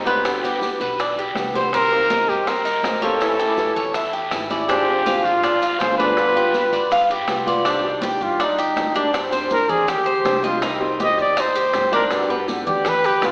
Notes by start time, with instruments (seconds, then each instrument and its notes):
Already playing: upright bass G1
0.05 steel-string acoustic guitar D#3 G3 C4 G4, cuban tres B3, high bongo, high conga, short guiro, maracas
0.24 steel-string acoustic guitar B2 D3 G3 B3 G4, high bongo, high conga, long guiro, maracas
0.42 steel-string acoustic guitar D3 G3 B3 G4, cuban tres G4, high bongo, high conga, maracas
0.61 steel-string acoustic guitar D3 G3 B3 G4, high bongo, high conga, short guiro, maracas
0.79 upright bass B1, cuban tres B4, high conga, short guiro, maracas
0.98 cuban tres D4, muted steel-string acoustic guitar stroke, high bongo, high conga, long guiro, maracas
1.16 cuban tres G4, high bongo, high conga
1.35 upright bass C2, steel-string acoustic guitar D3 G3 B3, high bongo, low bongo, high conga, short guiro, maracas
1.39 steel-string acoustic guitar G4
1.54 steel-string acoustic guitar D3 G3 B3 G4, cuban tres C5, high bongo, high conga, short guiro, maracas
1.73 steel-string acoustic guitar C3 D#3 A#3 C4 G4, cuban tres C4, trumpet A#4, high bongo, high conga, long guiro, maracas
1.91 steel-string acoustic guitar D#3 A#3 C4 G4, high conga
2.10 steel-string acoustic guitar D#3 A#3 C4 G4, cuban tres D#4, high bongo, high conga, short guiro, maracas
2.28 upright bass G2, trumpet G4, short guiro, maracas
2.47 cuban tres C4, trumpet A#4, muted steel-string acoustic guitar stroke, high bongo, high conga, long guiro, maracas
2.65 cuban tres D#4, high bongo, high conga, maracas
2.83 upright bass A2, steel-string acoustic guitar D#3 A#3 C4 G4, high bongo, low bongo, high conga, short guiro, maracas
3.01 steel-string acoustic guitar D#3 A#3 C4 G4, cuban tres C#4, trumpet A4, high bongo, high conga, short guiro, maracas
3.20 steel-string acoustic guitar E3 G3 C#4 E4, high bongo, high conga, long guiro, maracas
3.39 steel-string acoustic guitar G3 C#4 E4, cuban tres G4, high bongo, high conga, maracas
3.57 steel-string acoustic guitar E3 G3 C#4 E4, high bongo, high conga, short guiro, maracas
3.76 upright bass E2, cuban tres C#5, high conga, short guiro, maracas
3.94 cuban tres E4, muted steel-string acoustic guitar stroke, high bongo, high conga, long guiro, maracas
4.13 cuban tres G4, high bongo, high conga
4.31 upright bass G#1, steel-string acoustic guitar E3 G3 C#4 E4, high bongo, low bongo, high conga, short guiro, maracas
4.50 steel-string acoustic guitar G3 C#4 E4, cuban tres D5, high bongo, high conga, short guiro, maracas
4.68 steel-string acoustic guitar C3 F3 C4 D4 G#4, cuban tres D4, trumpet G4, high bongo, high conga, long guiro, maracas
4.88 steel-string acoustic guitar F3 C4 D4 G#4, high bongo, high conga
5.06 steel-string acoustic guitar F3 C4 D4 G#4, cuban tres F4, high bongo, high conga, short guiro, maracas
5.24 upright bass G#1, trumpet F4, short guiro, maracas
5.43 cuban tres D4, muted steel-string acoustic guitar stroke, high bongo, high conga, long guiro, maracas
5.62 cuban tres F4, high bongo, high conga, maracas
5.80 upright bass G1, steel-string acoustic guitar F3 C4 D4 G#4, trumpet C5, high bongo, low bongo, high conga, short guiro, maracas
5.98 steel-string acoustic guitar F3 C4 D4 G#4, cuban tres D4, trumpet B4, high bongo, high conga, short guiro, maracas
6.17 steel-string acoustic guitar G3 B3 F4, high bongo, high conga, long guiro, maracas
6.35 steel-string acoustic guitar B3 F4, cuban tres G4, high bongo, high conga
6.54 steel-string acoustic guitar G3 B3 F4, high bongo, high conga, short guiro, maracas
6.72 upright bass G2, cuban tres D5, high conga, short guiro, maracas
6.91 cuban tres F4, muted steel-string acoustic guitar stroke, high bongo, high conga, long guiro, maracas
7.10 cuban tres G4, high bongo, high conga
7.28 upright bass C2, steel-string acoustic guitar G3 B3 F4, high bongo, low bongo, high conga, short guiro, maracas
7.46 steel-string acoustic guitar B3 F4, cuban tres D5, high bongo, high conga, short guiro, maracas
7.65 steel-string acoustic guitar C3 D#3 G3 D4 G4, cuban tres D4, high bongo, high conga, maracas
7.84 steel-string acoustic guitar D#3 G3 D4 G4, high bongo, high conga
8.02 steel-string acoustic guitar D#3 G3 D4 G4, cuban tres G4, trumpet G4, high bongo, high conga, maracas
8.20 upright bass G2, trumpet F4, maracas
8.39 cuban tres D4, muted steel-string acoustic guitar stroke, high bongo, high conga, maracas
8.44 trumpet D#4
8.58 cuban tres G4, high bongo, high conga, maracas
8.76 upright bass G2, steel-string acoustic guitar D#3 G3 D4 G4, high bongo, low bongo, high conga, maracas
8.95 steel-string acoustic guitar D#3 G3 D4 G4, cuban tres D4, trumpet D4, high bongo, high conga, maracas
9.13 steel-string acoustic guitar C3 G3 C4 D4 G4, high bongo, high conga, maracas
9.31 steel-string acoustic guitar G3 C4 D4 G4, cuban tres C5, high bongo, high conga, maracas
9.49 steel-string acoustic guitar G3 C4 D4 G4, trumpet A#4, high bongo, high conga, maracas
9.69 upright bass D2, trumpet G#4, cuban tres D5, high conga, low conga, maracas
9.87 cuban tres G4, trumpet G4, muted steel-string acoustic guitar stroke, high bongo, high conga, low conga, maracas
10.06 cuban tres C5, high bongo, high conga
10.24 upright bass C2, steel-string acoustic guitar G3 C4 D4 G4, high bongo, low bongo, high conga, maracas
10.43 steel-string acoustic guitar G3 C4 D4 G4, trumpet F4, cuban tres D#5, high bongo, high conga, maracas
10.62 steel-string acoustic guitar C3 D#3 G3 C4 G4, cuban tres D#4, high bongo, high conga, maracas
10.80 steel-string acoustic guitar D#3 G3 C4 G4, high bongo, high conga
11.00 steel-string acoustic guitar D#3 G3 C4 G4, cuban tres G4, trumpet D#5, high bongo, high conga, maracas
11.18 upright bass D#2, trumpet D5, maracas
11.36 cuban tres D#4, muted steel-string acoustic guitar stroke, high bongo, high conga, maracas
11.41 trumpet C5
11.55 cuban tres G4, high bongo, high conga, maracas
11.73 upright bass G2, steel-string acoustic guitar D#3 G3 C4 G4, high bongo, low bongo, high conga, maracas
11.92 steel-string acoustic guitar D#3 G3 C4 G4, cuban tres D4, trumpet A#4, high bongo, high conga, maracas
12.11 steel-string acoustic guitar B2 D3 G3 B3 G4, high bongo, high conga, maracas
12.29 steel-string acoustic guitar D3 G3 B3 G4, cuban tres B4, high bongo, high conga
12.47 steel-string acoustic guitar D3 G3 B3 G4, high bongo, high conga, maracas
12.67 upright bass D2, trumpet G4, cuban tres D5, high conga, low conga, maracas
12.84 cuban tres G4, trumpet B4, muted steel-string acoustic guitar stroke, high bongo, high conga, low conga, maracas
13.03 trumpet G4, cuban tres B4, high bongo, high conga, maracas
13.22 upright bass C2, steel-string acoustic guitar D3 G3 B3 G4, trumpet F4, high bongo, low bongo, high conga, maracas